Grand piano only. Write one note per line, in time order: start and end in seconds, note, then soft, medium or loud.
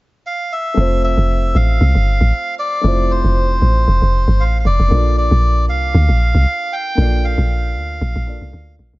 0.74 2.79 A3 medium
0.74 2.79 C4 medium
0.79 2.81 F4 medium
0.79 2.82 C5 medium
2.81 4.86 A3 medium
2.81 4.86 C4 medium
2.81 4.87 E4 medium
2.86 4.88 F4 medium
2.86 4.89 C5 medium
4.88 6.92 A#3 medium
4.88 6.93 D4 medium
4.88 6.94 F4 medium
4.93 6.95 A4 medium
4.93 6.96 D5 medium
6.95 8.23 A#3 medium
6.95 8.24 D4 medium
6.95 8.25 F4 medium
7.00 8.26 A4 medium
7.00 8.27 D5 medium
8.26 8.99 A#3 medium
8.26 8.99 D4 medium
8.26 8.99 F4 medium
8.26 8.99 A4 medium
8.26 8.99 D5 medium